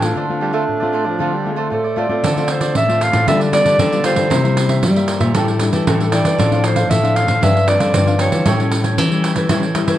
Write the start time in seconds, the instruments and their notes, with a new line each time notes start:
Already playing: nylon-string guitar A2 E3, clarinet D4
0.01 nylon-string guitar A3 C4 F4, cavaquinho A4 C#5 G5, pandeiro
0.15 nylon-string guitar D3, cavaquinho F4 A4 C5 D5
0.30 nylon-string guitar A3 C4 F4
0.41 tenor saxophone G3, cavaquinho F4 A4 C5 D5
0.53 tenor saxophone A3, cavaquinho F4 A4 C5 D5
0.68 nylon-string guitar A2
0.80 nylon-string guitar A3 C4 F4, cavaquinho A4 C5 D5
0.93 cavaquinho F4 A4 C5 D5
1.04 tenor saxophone F3, cavaquinho A4 C5 D5
1.19 nylon-string guitar D3 A3 C4 F4, cavaquinho F4 A4 C5 D5
1.34 tenor saxophone G3
1.45 nylon-string guitar A3 C4 F4
1.52 tenor saxophone G#3
1.56 tenor saxophone A3, cavaquinho F4 A4 C5 D5
1.70 nylon-string guitar A2, cavaquinho F4 A4 C5 D5, clarinet A4
1.84 cavaquinho A4 C5 D5
1.96 nylon-string guitar A3 C4 F4, cavaquinho F4 A4 C5 D5, clarinet D5
2.09 nylon-string guitar A3 C4 F4, cavaquinho A4 C5 D5
2.23 nylon-string guitar D3, cavaquinho F4 A4 C5 D5, pandeiro
2.36 nylon-string guitar A3 C4 F4, cavaquinho A4 C5 D5, pandeiro
2.48 clarinet C5, muted cavaquinho stroke, pandeiro
2.61 cavaquinho A4 C5 D5, pandeiro
2.75 nylon-string guitar A2, clarinet E5, pandeiro
2.89 nylon-string guitar A3 C4 F4, cavaquinho A4 C5 D5, pandeiro
3.00 cavaquinho F4 A4 C5 D5, clarinet F5, pandeiro
3.12 nylon-string guitar A2, cavaquinho A4 C5 D5, pandeiro
3.26 nylon-string guitar D3 G3 B3 F4, cavaquinho F4 G4 B4 D5, clarinet E5, pandeiro
3.40 cavaquinho G4 B4 D5, pandeiro
3.52 nylon-string guitar G3 B3 F4, clarinet D5, muted cavaquinho stroke, pandeiro
3.64 nylon-string guitar D3, cavaquinho G4 B4 D5, pandeiro
3.78 nylon-string guitar D3, cavaquinho F4 G4 B4 D5, pandeiro
3.92 nylon-string guitar G3 B3 F4, cavaquinho G4 B4 D5, pandeiro
4.04 nylon-string guitar G3 B3 F4, cavaquinho F4 G4 B4 D5, clarinet C5, pandeiro
4.16 nylon-string guitar D3, pandeiro
4.30 nylon-string guitar C3 G3 A#3 E4, cavaquinho E4 A#4 C5 E5, pandeiro
4.44 nylon-string guitar G3 A#3 E4, cavaquinho A#4 C5 E5, pandeiro
4.56 muted cavaquinho stroke, pandeiro
4.69 cavaquinho A#4 C5 E5, pandeiro
4.83 nylon-string guitar G2 G3, pandeiro
4.96 nylon-string guitar G3 A#3 E4, cavaquinho A#4 C5 E5, pandeiro
5.08 cavaquinho E4 A#4 C5 E5, pandeiro
5.20 nylon-string guitar A#2, cavaquinho A#4 C5 E5, pandeiro
5.35 nylon-string guitar A2 G3 D4 E4, cavaquinho D4 A4 D5 G5, pandeiro
5.48 cavaquinho A4 D5 G5, pandeiro
5.59 nylon-string guitar G3 D4 E4, muted cavaquinho stroke, pandeiro
5.73 nylon-string guitar E3, cavaquinho A4 D5 G5, pandeiro
5.87 nylon-string guitar A2 E3, cavaquinho D4 A4 D5 G5, clarinet A4, pandeiro
6.00 nylon-string guitar G3 D4 E4, cavaquinho A4 D5 G5, pandeiro
6.12 nylon-string guitar G3 D4 E4, cavaquinho D4 A4 D5 G5, clarinet D5, pandeiro
6.25 nylon-string guitar E3, pandeiro
6.38 nylon-string guitar A2 F3 C4 D4, cavaquinho D4 A4 C5 F5, pandeiro
6.51 nylon-string guitar F3 C4 D4, cavaquinho A4 C5 F5, pandeiro
6.64 clarinet C5, muted cavaquinho stroke, pandeiro
6.76 cavaquinho A4 C5 F5, pandeiro
6.89 nylon-string guitar A2, clarinet E5, pandeiro
7.02 nylon-string guitar F3 C4 D4, cavaquinho A4 C5 F5, pandeiro
7.15 cavaquinho D4 A4 C5 F5, clarinet F5, pandeiro
7.27 nylon-string guitar A2, cavaquinho A4 C5 F5, pandeiro
7.41 nylon-string guitar G2 F3 C4 D4, cavaquinho D4 G4 C5 F5, clarinet E5, pandeiro
7.54 cavaquinho G4 C5 F5, pandeiro
7.67 nylon-string guitar F3 C4 D4, clarinet D5, muted cavaquinho stroke, pandeiro
7.79 nylon-string guitar D3, cavaquinho G4 C5 F5, pandeiro
7.93 nylon-string guitar G2 D3, cavaquinho D4 G4 C5, pandeiro
8.06 nylon-string guitar F3 C4 D4, cavaquinho G4 C5 F5, pandeiro
8.18 nylon-string guitar F3 C4 D4, cavaquinho D4 G4 C5 F5, clarinet C#5, pandeiro
8.32 nylon-string guitar E3, pandeiro
8.45 nylon-string guitar A2 G3 C#4 E4, cavaquinho E4 A4 C#5 G5, pandeiro
8.60 nylon-string guitar G3 C#4 E4, cavaquinho A4 C#5 G5, pandeiro
8.71 muted cavaquinho stroke, pandeiro
8.84 cavaquinho A4 C#5 G5, pandeiro
8.98 nylon-string guitar E3, pandeiro
9.10 nylon-string guitar G3 C#4 E4, cavaquinho A4 C#5 G5, pandeiro
9.23 cavaquinho E4 A4 C#5 G5, pandeiro
9.36 nylon-string guitar E3, cavaquinho A4 C#5 G5, pandeiro
9.49 nylon-string guitar A2 E3 G3 C#4 E4, cavaquinho E4 A4 C#5 G5, pandeiro
9.63 cavaquinho A4 C#5 G5, pandeiro
9.75 nylon-string guitar G3 C#4 E4, muted cavaquinho stroke, pandeiro
9.88 nylon-string guitar E3, cavaquinho A4 C#5 G5, pandeiro